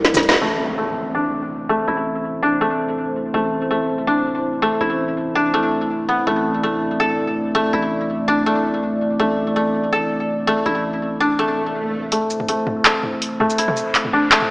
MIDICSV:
0, 0, Header, 1, 8, 480
1, 0, Start_track
1, 0, Key_signature, 0, "minor"
1, 0, Tempo, 365854
1, 544, Time_signature, 4, 2, 24, 8
1, 19031, End_track
2, 0, Start_track
2, 0, Title_t, "Analog synth pad"
2, 0, Program_c, 0, 89
2, 0, Note_on_c, 0, 60, 81
2, 0, Note_on_c, 0, 64, 75
2, 0, Note_on_c, 0, 69, 78
2, 0, Note_on_c, 0, 74, 93
2, 491, Note_off_c, 0, 64, 0
2, 492, Note_off_c, 0, 60, 0
2, 493, Note_off_c, 0, 69, 0
2, 517, Note_off_c, 0, 74, 0
2, 547, Note_on_c, 0, 57, 80
2, 547, Note_on_c, 0, 72, 89
2, 548, Note_on_c, 0, 64, 77
2, 549, Note_on_c, 0, 60, 75
2, 8199, Note_off_c, 0, 72, 0
2, 8220, Note_on_c, 0, 74, 94
2, 15854, Note_off_c, 0, 57, 0
2, 15854, Note_off_c, 0, 60, 0
2, 15854, Note_off_c, 0, 64, 0
2, 15876, Note_off_c, 0, 74, 0
2, 15901, Note_on_c, 0, 57, 83
2, 15901, Note_on_c, 0, 64, 78
2, 15902, Note_on_c, 0, 60, 79
2, 15902, Note_on_c, 0, 72, 92
2, 19031, Note_off_c, 0, 57, 0
2, 19031, Note_off_c, 0, 60, 0
2, 19031, Note_off_c, 0, 64, 0
2, 19031, Note_off_c, 0, 72, 0
2, 19031, End_track
3, 0, Start_track
3, 0, Title_t, "Koto"
3, 0, Program_c, 1, 107
3, 544, Note_on_c, 1, 57, 75
3, 1017, Note_off_c, 1, 57, 0
3, 1022, Note_on_c, 1, 57, 69
3, 1502, Note_on_c, 1, 62, 79
3, 2216, Note_off_c, 1, 57, 0
3, 2221, Note_on_c, 1, 57, 98
3, 2462, Note_on_c, 1, 64, 77
3, 3177, Note_off_c, 1, 62, 0
3, 3182, Note_on_c, 1, 62, 89
3, 3419, Note_off_c, 1, 57, 0
3, 3424, Note_on_c, 1, 57, 95
3, 4377, Note_off_c, 1, 57, 0
3, 4382, Note_on_c, 1, 57, 77
3, 4857, Note_off_c, 1, 57, 0
3, 4862, Note_on_c, 1, 57, 69
3, 5338, Note_off_c, 1, 62, 0
3, 5343, Note_on_c, 1, 62, 81
3, 5431, Note_off_c, 1, 64, 0
3, 6059, Note_off_c, 1, 57, 0
3, 6064, Note_on_c, 1, 57, 96
3, 6306, Note_on_c, 1, 64, 76
3, 7019, Note_off_c, 1, 62, 0
3, 7024, Note_on_c, 1, 62, 92
3, 7259, Note_off_c, 1, 57, 0
3, 7265, Note_on_c, 1, 57, 91
3, 7984, Note_on_c, 1, 59, 75
3, 8219, Note_off_c, 1, 57, 0
3, 8224, Note_on_c, 1, 57, 79
3, 8698, Note_off_c, 1, 57, 0
3, 8704, Note_on_c, 1, 57, 72
3, 9182, Note_on_c, 1, 69, 94
3, 9275, Note_off_c, 1, 64, 0
3, 9898, Note_off_c, 1, 57, 0
3, 9903, Note_on_c, 1, 57, 103
3, 10143, Note_on_c, 1, 64, 79
3, 10207, Note_off_c, 1, 62, 0
3, 10862, Note_on_c, 1, 62, 92
3, 11098, Note_off_c, 1, 57, 0
3, 11104, Note_on_c, 1, 57, 94
3, 11516, Note_off_c, 1, 59, 0
3, 11679, Note_off_c, 1, 69, 0
3, 12059, Note_off_c, 1, 57, 0
3, 12064, Note_on_c, 1, 57, 80
3, 12538, Note_off_c, 1, 57, 0
3, 12543, Note_on_c, 1, 57, 72
3, 13022, Note_on_c, 1, 69, 95
3, 13113, Note_off_c, 1, 64, 0
3, 13736, Note_off_c, 1, 57, 0
3, 13741, Note_on_c, 1, 57, 104
3, 13982, Note_on_c, 1, 64, 78
3, 14045, Note_off_c, 1, 62, 0
3, 14700, Note_on_c, 1, 62, 93
3, 14937, Note_off_c, 1, 57, 0
3, 14943, Note_on_c, 1, 57, 99
3, 15519, Note_off_c, 1, 69, 0
3, 15896, Note_off_c, 1, 57, 0
3, 15901, Note_on_c, 1, 57, 82
3, 16376, Note_off_c, 1, 57, 0
3, 16381, Note_on_c, 1, 57, 73
3, 16863, Note_on_c, 1, 69, 97
3, 16952, Note_off_c, 1, 64, 0
3, 17577, Note_off_c, 1, 57, 0
3, 17582, Note_on_c, 1, 57, 99
3, 17823, Note_on_c, 1, 64, 80
3, 17883, Note_off_c, 1, 62, 0
3, 18542, Note_on_c, 1, 62, 98
3, 18779, Note_off_c, 1, 57, 0
3, 18784, Note_on_c, 1, 57, 100
3, 19031, Note_off_c, 1, 57, 0
3, 19031, Note_off_c, 1, 62, 0
3, 19031, Note_off_c, 1, 64, 0
3, 19031, Note_off_c, 1, 69, 0
3, 19031, End_track
4, 0, Start_track
4, 0, Title_t, "808-style bass"
4, 0, Program_c, 2, 38
4, 0, Note_on_c, 2, 36, 100
4, 527, Note_off_c, 2, 36, 0
4, 544, Note_on_c, 2, 33, 87
4, 2442, Note_off_c, 2, 33, 0
4, 2465, Note_on_c, 2, 33, 86
4, 4363, Note_off_c, 2, 33, 0
4, 4383, Note_on_c, 2, 33, 86
4, 6281, Note_off_c, 2, 33, 0
4, 6307, Note_on_c, 2, 33, 87
4, 8204, Note_off_c, 2, 33, 0
4, 8227, Note_on_c, 2, 33, 86
4, 10124, Note_off_c, 2, 33, 0
4, 10146, Note_on_c, 2, 33, 85
4, 12043, Note_off_c, 2, 33, 0
4, 12066, Note_on_c, 2, 33, 86
4, 13963, Note_off_c, 2, 33, 0
4, 13984, Note_on_c, 2, 33, 88
4, 15882, Note_off_c, 2, 33, 0
4, 19031, End_track
5, 0, Start_track
5, 0, Title_t, "Impact"
5, 0, Program_c, 3, 103
5, 543, Note_on_c, 3, 60, 70
5, 2464, Note_off_c, 3, 60, 0
5, 19031, End_track
6, 0, Start_track
6, 0, Title_t, "Riser"
6, 0, Program_c, 4, 103
6, 15902, Note_on_c, 4, 60, 78
6, 19031, Note_off_c, 4, 60, 0
6, 19031, End_track
7, 0, Start_track
7, 0, Title_t, "Swell"
7, 0, Program_c, 5, 103
7, 14943, Note_on_c, 5, 60, 72
7, 15904, Note_off_c, 5, 60, 0
7, 19031, End_track
8, 0, Start_track
8, 0, Title_t, "Drums"
8, 60, Note_on_c, 9, 38, 69
8, 60, Note_on_c, 9, 42, 70
8, 189, Note_on_c, 9, 45, 86
8, 189, Note_on_c, 9, 82, 71
8, 192, Note_off_c, 9, 38, 0
8, 192, Note_off_c, 9, 42, 0
8, 221, Note_on_c, 9, 38, 87
8, 300, Note_on_c, 9, 42, 38
8, 320, Note_off_c, 9, 45, 0
8, 320, Note_off_c, 9, 82, 0
8, 352, Note_off_c, 9, 38, 0
8, 379, Note_on_c, 9, 38, 94
8, 416, Note_off_c, 9, 38, 0
8, 416, Note_on_c, 9, 38, 73
8, 431, Note_off_c, 9, 42, 0
8, 446, Note_off_c, 9, 38, 0
8, 446, Note_on_c, 9, 38, 62
8, 475, Note_off_c, 9, 38, 0
8, 475, Note_on_c, 9, 38, 52
8, 606, Note_off_c, 9, 38, 0
8, 15900, Note_on_c, 9, 42, 80
8, 16032, Note_off_c, 9, 42, 0
8, 16140, Note_on_c, 9, 82, 35
8, 16269, Note_on_c, 9, 45, 55
8, 16272, Note_off_c, 9, 82, 0
8, 16380, Note_on_c, 9, 42, 65
8, 16400, Note_off_c, 9, 45, 0
8, 16511, Note_off_c, 9, 42, 0
8, 16620, Note_on_c, 9, 45, 83
8, 16752, Note_off_c, 9, 45, 0
8, 16861, Note_on_c, 9, 39, 115
8, 16861, Note_on_c, 9, 42, 82
8, 16992, Note_off_c, 9, 39, 0
8, 16992, Note_off_c, 9, 42, 0
8, 17100, Note_on_c, 9, 45, 54
8, 17232, Note_off_c, 9, 45, 0
8, 17342, Note_on_c, 9, 42, 69
8, 17473, Note_off_c, 9, 42, 0
8, 17582, Note_on_c, 9, 45, 54
8, 17711, Note_on_c, 9, 82, 35
8, 17713, Note_off_c, 9, 45, 0
8, 17822, Note_on_c, 9, 42, 82
8, 17843, Note_off_c, 9, 82, 0
8, 17950, Note_on_c, 9, 45, 75
8, 17953, Note_off_c, 9, 42, 0
8, 18062, Note_on_c, 9, 82, 35
8, 18081, Note_off_c, 9, 45, 0
8, 18193, Note_off_c, 9, 82, 0
8, 18301, Note_on_c, 9, 39, 61
8, 18301, Note_on_c, 9, 42, 67
8, 18432, Note_off_c, 9, 39, 0
8, 18432, Note_off_c, 9, 42, 0
8, 18432, Note_on_c, 9, 45, 52
8, 18563, Note_off_c, 9, 45, 0
8, 18783, Note_on_c, 9, 39, 119
8, 18783, Note_on_c, 9, 42, 83
8, 18914, Note_off_c, 9, 39, 0
8, 18914, Note_off_c, 9, 42, 0
8, 18914, Note_on_c, 9, 45, 51
8, 19031, Note_off_c, 9, 45, 0
8, 19031, End_track
0, 0, End_of_file